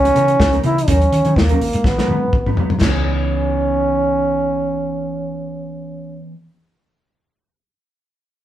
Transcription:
Already playing: trombone C#4
0.04 clean electric guitar E3 B3 D#4 G#4, closed hi-hat
0.14 fingered electric bass C#3, clean electric guitar E3 B3 D#4 A#4, closed hi-hat
0.28 muted clean electric guitar stroke, closed hi-hat
0.40 fingered electric bass C#2, kick, snare
0.53 clean electric guitar E3 B3 D#4 A#4, closed hi-hat
0.63 fingered electric bass C#3, clean electric guitar E3 B3 D#4 A#4, trombone E4, closed hi-hat
0.78 muted clean electric guitar stroke, closed hi-hat
0.88 fingered electric bass D#2, clean electric guitar F#3 C#4 D#4 A#4, trombone C#4, kick, closed hi-hat
1.02 muted clean electric guitar stroke, closed hi-hat
1.12 fingered electric bass D#3, muted clean electric guitar stroke, closed hi-hat
1.25 fingered electric bass D#3, clean electric guitar F#3 C#4 D#4 C#5, closed hi-hat
1.36 fingered electric bass D#2, trombone A#3, muted clean electric guitar stroke, kick, snare
1.49 clean electric guitar F#3 C#4 D#4 A#4, closed hi-hat
1.61 fingered electric bass G#1, muted clean electric guitar stroke, open hi-hat
1.73 fingered electric bass G#2, muted clean electric guitar stroke, closed hi-hat
1.84 fingered electric bass G#1, trombone B3, muted clean electric guitar stroke, kick, snare
1.99 clean electric guitar F#3 B3 D#4 A#4, snare
2.08 fingered electric bass G#2, clean electric guitar F#3 B3 D#4 B4, high tom
2.23 muted clean electric guitar stroke
2.33 fingered electric bass G#1, muted clean electric guitar stroke, kick
2.46 clean electric guitar F#3 B3 D#4 B4, mid tom
2.57 fingered electric bass G#2, clean electric guitar F#3 B3 D#4 B4, floor tom
2.70 muted clean electric guitar stroke, floor tom
2.81 fingered electric bass C#2, clean electric guitar E3 B3, trombone C#4, kick, snare, china
2.85 clean electric guitar D#4 G#4

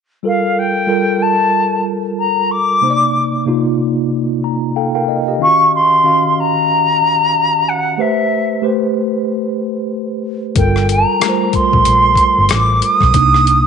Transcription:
0.23 tine electric piano G3 F4 A4 A#4, flute F5
0.58 flute G5
0.87 tine electric piano G3 F4 A4 A#4
1.22 flute A5
2.19 flute A#5
2.51 flute D6
2.81 tine electric piano C3 A#3 D#4 C5
2.90 tine electric piano D5
3.46 tine electric piano C3 A#3 D#4 F4
4.44 tine electric piano A#5
4.76 tine electric piano A4 F5 G5
4.95 tine electric piano A#4 F5 G5
5.08 tine electric piano D#5
5.28 tine electric piano G4 D#5
5.39 tine electric piano D#3 C#4 F4 F5, flute C#6
5.47 tine electric piano F#4
5.75 flute C6
6.04 tine electric piano D#3 C#4 F#4 F5
6.40 flute A#5
7.68 flute F#5
7.98 tine electric piano A3 G4 B4 C5, flute E5
8.62 tine electric piano A3 G4 B4 C5
10.55 fingered electric bass G1, tine electric piano G3 F4 A4 A#4, flute G5, kick, closed hi-hat
10.76 cross-stick
10.89 flute A#5, closed hi-hat
11.20 tine electric piano G3 A3 F4 A#4, cross-stick, closed hi-hat
11.29 tine electric piano C5
11.53 flute C6, muted fingered electric bass stroke, kick, closed hi-hat
11.73 fingered electric bass A#1, kick
11.85 fingered electric bass A#1, closed hi-hat
12.16 kick, closed hi-hat
12.38 fingered electric bass G1
12.49 fingered electric bass A1, flute D6, cross-stick, closed hi-hat
12.82 flute D#6, closed hi-hat
13.01 fingered electric bass B1, kick, cross-stick
13.14 fingered electric bass C2, tine electric piano C3 A#3 D4 D#4, kick, closed hi-hat
13.34 cross-stick
13.47 closed hi-hat

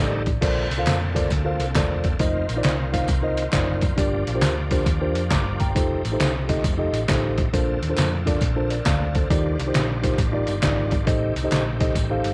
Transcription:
Already playing: fingered electric bass A1, tonewheel organ D#3 G3 A3 C4 D4 D#4 A4, tine electric piano D#4 G4
0.00 tine electric piano A4 D5
0.26 kick, closed hi-hat, tambourine
0.41 fingered electric bass A#1, tine electric piano A#2 F4 A4 A#4 C5 D5, tonewheel organ D3 A#3 C4 A4, kick, closed hi-hat, crash, tambourine
0.71 fingered electric bass C2, closed hi-hat, tambourine
0.78 tine electric piano F4 A4 A#4 C5 F5
0.87 fingered electric bass F2, snare, clap, closed hi-hat, tambourine
1.14 tine electric piano F4 A4 A#4 C5 D5, kick, closed hi-hat, tambourine
1.24 snare
1.30 fingered electric bass D2, kick, closed hi-hat, tambourine
1.45 tine electric piano F4 A4 A#4 C5 F5
1.59 fingered electric bass C2, closed hi-hat, tambourine
1.75 fingered electric bass E1, tine electric piano F4 A4 A#4 C5 D5, kick, snare, clap, closed hi-hat, tambourine
2.04 kick, closed hi-hat, tambourine
2.19 fingered electric bass F1, tonewheel organ D#3 F4, tine electric piano D#4 F4 A#4 C5 D#5, kick, closed hi-hat, tambourine
2.49 fingered electric bass A#1, closed hi-hat, tambourine
2.56 tine electric piano D#4 F4 A#4 C5 D5
2.64 fingered electric bass C2, snare, clap, closed hi-hat, tambourine
2.92 tine electric piano D#4 F4 A#4 C5 F5, kick, closed hi-hat, tambourine
3.02 snare
3.08 fingered electric bass C2, kick, closed hi-hat, tambourine
3.22 tine electric piano D#4 F4 A#4 C5 D#5
3.37 closed hi-hat, tambourine
3.52 fingered electric bass F#1, tine electric piano D#4 F4 A#4 C5 D5, kick, snare, clap, closed hi-hat, tambourine
3.81 kick, closed hi-hat, tambourine
3.96 fingered electric bass G1, tine electric piano G2 D4 F4 G4 A#4 D5, tonewheel organ F3 D4 G4, kick, closed hi-hat, tambourine
4.27 fingered electric bass A#1, closed hi-hat, tambourine
4.34 tine electric piano D4 F4 G4 A#4 C5
4.42 fingered electric bass D2, snare, clap, closed hi-hat, tambourine
4.71 tine electric piano D4 F4 G4 A#4 C5, kick, closed hi-hat, tambourine
4.79 snare
4.86 fingered electric bass D#2, kick, closed hi-hat, tambourine
5.01 tine electric piano D4 F4 G4 A#4 C5
5.15 fingered electric bass F2, closed hi-hat, tambourine
5.31 fingered electric bass G1, tine electric piano A#5 D6, kick, snare, clap, closed hi-hat, tambourine
5.60 tine electric piano G5 A#5, kick, closed hi-hat, tambourine
5.75 fingered electric bass F1, tonewheel organ A3 D#4, tine electric piano D#4 F4 G4 A4 C5, kick, closed hi-hat, tambourine
6.05 fingered electric bass A1, closed hi-hat, tambourine
6.12 tine electric piano D#4 F4 G4 A4 C5
6.20 fingered electric bass C2, snare, clap, closed hi-hat, tambourine
6.48 tine electric piano D#4 F4 G4 A4 D#5, kick, closed hi-hat, tambourine
6.57 snare
6.64 fingered electric bass F1, kick, closed hi-hat, tambourine
6.78 tine electric piano D#4 F4 G4 A4 D#5
6.93 fingered electric bass A1, closed hi-hat, tambourine
7.08 fingered electric bass A1, tine electric piano D#4 F4 G4 A4 C5, kick, snare, clap, closed hi-hat, tambourine
7.38 kick, closed hi-hat, tambourine
7.53 fingered electric bass A#1, tine electric piano A#2 D4 F4 A4 A#4 C5, tonewheel organ D3 A#3 C4 A4, kick, closed hi-hat, tambourine
7.82 fingered electric bass D#2, closed hi-hat, tambourine
7.89 tine electric piano D4 F4 A4 A#4 C5
7.97 fingered electric bass F2, snare, clap, closed hi-hat, tambourine
8.26 tine electric piano D4 F4 A4 A#4 D5, kick, closed hi-hat, tambourine
8.35 snare
8.41 fingered electric bass A#1, kick, closed hi-hat, tambourine
8.56 tine electric piano D4 F4 A4 A#4 C5
8.70 tine electric piano A#4 D5, closed hi-hat, tambourine
8.86 fingered electric bass D2, tine electric piano D5 F5, kick, snare, clap, closed hi-hat, tambourine
9.15 tine electric piano A4 C5, kick, closed hi-hat, tambourine
9.30 fingered electric bass D#2, tine electric piano D#3 D#4 F4 G4 A#4 D5, tonewheel organ D#3 G3 D4 F4, kick, closed hi-hat, tambourine
9.59 fingered electric bass C2, closed hi-hat, tambourine
9.66 tine electric piano D#4 F4 G4 A#4 C5
9.74 fingered electric bass A#1, snare, clap, closed hi-hat, tambourine
10.03 tine electric piano D#4 F4 G4 A#4 C5, kick, closed hi-hat, tambourine
10.11 snare
10.18 fingered electric bass A1, kick, closed hi-hat, tambourine
10.33 tine electric piano D#4 F4 G4 A#4 D5
10.47 fingered electric bass G1, closed hi-hat, tambourine
10.62 fingered electric bass G#1, tine electric piano D#4 F4 G4 A#4 D5, kick, snare, clap, closed hi-hat, tambourine
10.91 kick, closed hi-hat, tambourine
11.06 fingered electric bass A1, tine electric piano A2 D#4 G4 A4 C5 D#5, tonewheel organ A3 C4 G4, kick, closed hi-hat, tambourine
11.36 fingered electric bass C2, closed hi-hat, tambourine
11.44 tine electric piano D#4 G4 A4 C5 D#5
11.51 fingered electric bass A#1, snare, clap, closed hi-hat, tambourine
11.79 tine electric piano D#4 G4 A4 C5 D#5, kick, closed hi-hat, tambourine
11.89 snare
11.95 fingered electric bass A1, kick, closed hi-hat, tambourine
12.10 tine electric piano D#4 G4 A4 C5 F5
12.24 fingered electric bass G1, closed hi-hat, tambourine

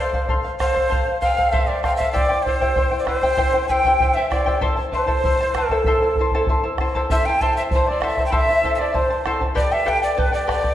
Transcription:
Already playing: quena C5, pan flute D5
0.00 charango A4 C5 F5
0.13 charango A4 C5 F5, bombo low
0.29 charango A4 C5 F5, bombo low
0.44 charango C5 F5
0.60 charango A4 C5 F5, quena C5, pan flute F5, bombo rim, bombo low
0.73 charango A4 C5 F5, bombo low
0.89 charango A4 C5 F5, bombo low
1.06 charango C5 F5
1.21 charango A4 C5 F5, quena F5, pan flute G5, bombo low
1.37 charango A4 C5 F5, bombo low
1.52 charango A4 C5 F5, quena E5, pan flute F5, bombo low
1.67 charango C5 F5, quena D5, pan flute E5
1.83 charango A4 C5 F5, quena F5, pan flute G5, bombo rim, bombo low
1.97 charango A4 C5 F5, quena E5, bombo low
2.01 pan flute F5
2.12 charango E4 G4 C5 E5 G5, quena D5, pan flute G5, bombo low
2.29 charango E4 C5 G5
2.42 quena C5, bombo low
2.47 charango E4 C5 E5 G5, pan flute C5
2.61 charango E4 G4 C5 E5 G5, bombo low
2.76 charango E4 C5 E5 G5, bombo low
2.91 charango E4 C5 G5
2.99 quena D5, pan flute F5
3.06 charango E4 C5 E5 G5, quena B4, pan flute C5, bombo rim, bombo low
3.18 quena C5
3.23 charango E4 G4 C5 E5 G5, bombo low
3.37 charango E4 G4 C5 E5 G5, bombo low
3.54 charango E4 C5 G5
3.68 charango E4 C5 E5 G5, pan flute G5, quena G5 G#5, bombo low
3.85 charango E4 G4 C5 E5 G5, bombo low
4.00 charango E4 C5 E5 G5, bombo low
4.14 charango E4 C5 G5, quena E5, pan flute E5
4.30 charango E4 C5 E5 G5, quena D5, pan flute D5, bombo rim, bombo low
4.46 charango E4 G4 C5 E5 G5, bombo low
4.61 charango E4 A4 C5 E5 A5, bombo low
4.77 charango E4 C5 A5
4.92 charango E4 C5 E5 A5, pan flute C5, quena C5, bombo low
5.07 charango E4 A4 C5 E5 A5, bombo low
5.24 charango E4 C5 E5 A5, bombo low
5.41 charango E4 C5 A5
5.54 charango E4 C5 E5 A5, quena A4, pan flute A4, bombo rim, bombo low
5.70 charango E4 A4 C5 E5 A5, bombo low
5.84 charango E4 A4 C5 E5 A5, bombo low
6.03 charango E4 C5 A5
6.16 charango E5, bombo low
6.20 charango E4 C5 A5
6.31 charango E4 A4 C5 E5 A5, bombo low
6.47 charango E4 C5 E5 A5, bombo low
6.64 charango E4 C5 A5
6.78 charango E4 C5 E5 A5, bombo rim, bombo low
6.95 charango E4 A4 C5 E5 A5, bombo low
7.10 charango E4 A4 C5 E5 A5, pan flute E5, quena E5, bombo low
7.25 charango E4 C5 A5, quena G5, pan flute G5
7.41 charango E4 A4 C5 E5 A5, quena A5, pan flute A5, bombo low
7.57 charango E4 C5 A5, quena E5, pan flute E5
7.71 charango E4 E5, quena C5, pan flute C5, bombo low
7.75 charango C5 A5
7.87 charango E4 C5 A5, quena D5, pan flute D5
8.01 charango E4 A4 C5 E5 A5, quena E5 F5, bombo rim, bombo low
8.06 pan flute E5
8.17 charango E4 C5 A5, bombo low
8.26 quena G5, pan flute B5
8.32 charango E4 A4 C5 E5 A5, quena E5, bombo low
8.37 pan flute E5
8.49 charango E4 C5 A5
8.64 charango E4 A4 C5 E5 A5, bombo low
8.75 quena E5, pan flute G5
8.79 charango E4 C5 A5, quena D5, pan flute D5
8.93 charango E4 C5 E5 A5, pan flute C5, quena C5, bombo low
9.10 charango E4 C5 A5
9.26 charango E4 A4 C5 E5 A5, bombo rim, bombo low
9.41 charango E4 C5 A5, bombo low
9.55 charango G4 A4 B4 D5 G5, pan flute D5, quena D5, bombo low
9.71 charango G4 A4 G5, quena E5, pan flute E5
9.86 charango G4 A4 B4 D5 G5, pan flute G5, quena G5, bombo low
10.02 charango G4 A4 G5, pan flute D5, quena D5
10.17 charango G4 A4 D5 G5, pan flute B4, quena B4, bombo low
10.32 charango G4 A4 G5, pan flute D5, quena D5
10.47 charango G4 A4 B4 D5 G5, pan flute D5, quena D5, bombo rim, bombo low
10.63 charango G4 A4 G5, bombo low

